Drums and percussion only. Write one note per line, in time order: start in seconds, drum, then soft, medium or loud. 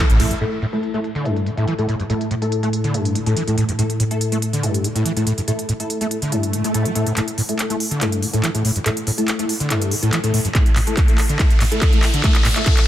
0.10 closed hi-hat medium
0.20 open hi-hat loud
0.20 ride medium
0.31 closed hi-hat medium
0.41 closed hi-hat medium
0.41 crash medium
0.52 closed hi-hat medium
0.62 closed hi-hat medium
0.73 closed hi-hat medium
0.83 closed hi-hat medium
0.94 closed hi-hat medium
1.04 closed hi-hat medium
1.15 closed hi-hat medium
1.25 closed hi-hat medium
1.36 closed hi-hat medium
1.46 closed hi-hat medium
1.57 closed hi-hat medium
1.68 closed hi-hat medium
1.79 closed hi-hat medium
1.89 closed hi-hat medium
2.00 closed hi-hat medium
2.10 closed hi-hat medium
2.21 closed hi-hat medium
2.31 closed hi-hat medium
2.42 closed hi-hat medium
2.52 closed hi-hat medium
2.63 closed hi-hat medium
2.73 closed hi-hat medium
2.84 closed hi-hat medium
2.94 closed hi-hat medium
3.05 closed hi-hat medium
3.15 closed hi-hat medium
3.26 closed hi-hat medium
3.37 closed hi-hat medium
3.48 closed hi-hat medium
3.58 closed hi-hat medium
3.69 closed hi-hat medium
3.79 closed hi-hat medium
3.90 closed hi-hat medium
4.00 closed hi-hat medium
4.11 closed hi-hat medium
4.21 closed hi-hat medium
4.32 closed hi-hat medium
4.42 closed hi-hat medium
4.53 closed hi-hat medium
4.63 closed hi-hat medium
4.74 closed hi-hat medium
4.84 closed hi-hat medium
4.96 closed hi-hat medium
5.06 closed hi-hat medium
5.17 closed hi-hat medium
5.27 closed hi-hat medium
5.38 closed hi-hat medium
5.48 closed hi-hat medium
5.59 closed hi-hat medium
5.69 closed hi-hat medium
5.80 closed hi-hat medium
5.90 closed hi-hat medium
6.01 closed hi-hat soft
6.11 closed hi-hat medium
6.22 closed hi-hat medium
6.32 closed hi-hat medium
6.43 closed hi-hat medium
6.53 closed hi-hat medium
6.64 closed hi-hat medium
6.74 closed hi-hat medium
6.85 closed hi-hat soft
6.95 closed hi-hat medium
7.07 closed hi-hat medium
7.17 clap soft
7.17 closed hi-hat medium
7.28 closed hi-hat medium
7.38 open hi-hat loud
7.49 closed hi-hat medium
7.59 clap soft
7.59 closed hi-hat medium
7.70 closed hi-hat medium
7.80 open hi-hat loud
7.91 closed hi-hat medium
8.01 clap medium
8.01 closed hi-hat medium
8.12 closed hi-hat medium
8.23 open hi-hat loud
8.33 closed hi-hat medium
8.44 clap medium
8.44 closed hi-hat medium
8.55 closed hi-hat medium
8.65 open hi-hat loud
8.76 closed hi-hat medium
8.86 clap medium
8.86 closed hi-hat medium
8.97 closed hi-hat medium
9.07 open hi-hat loud
9.18 closed hi-hat medium
9.28 clap medium
9.28 closed hi-hat medium
9.39 closed hi-hat medium
9.49 open hi-hat loud
9.60 closed hi-hat medium
9.70 clap medium
9.70 closed hi-hat medium
9.82 closed hi-hat medium
9.91 open hi-hat loud
10.03 closed hi-hat medium
10.13 clap medium
10.13 closed hi-hat medium
10.24 closed hi-hat medium
10.34 open hi-hat loud
10.45 closed hi-hat medium
10.55 kick loud
10.55 clap medium
10.55 closed hi-hat medium
10.66 closed hi-hat medium
10.76 clap medium
10.76 open hi-hat loud
10.87 closed hi-hat medium
10.97 kick loud
10.97 clap medium
10.97 closed hi-hat medium
11.08 closed hi-hat medium
11.18 clap medium
11.18 open hi-hat loud
11.29 closed hi-hat medium
11.39 kick loud
11.39 clap medium
11.39 closed hi-hat medium
11.50 closed hi-hat medium
11.60 clap medium
11.60 open hi-hat loud
11.72 closed hi-hat medium
11.82 kick loud
11.82 clap medium
11.82 closed hi-hat medium
11.93 closed hi-hat medium
12.03 clap medium
12.03 open hi-hat loud
12.14 closed hi-hat medium
12.24 kick loud
12.24 clap medium
12.24 closed hi-hat medium
12.35 clap medium
12.35 closed hi-hat medium
12.45 clap medium
12.45 open hi-hat loud
12.56 clap medium
12.56 closed hi-hat medium
12.66 kick loud
12.66 clap loud
12.66 closed hi-hat medium
12.77 clap medium
12.77 closed hi-hat medium